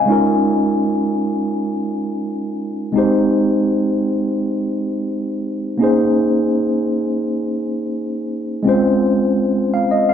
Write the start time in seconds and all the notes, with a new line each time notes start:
Already playing: D#5 F5 G#5
0.06 G#3 C#4 D#4
0.11 F4 A#4
2.93 G#3 C4 D#4
2.97 G4 C5
5.78 A#3 C#4 D#4
5.82 G#4 C5
8.63 G#3 C4 C#4
8.68 F4 C5
9.74 F5
9.91 D#5
10.09 F5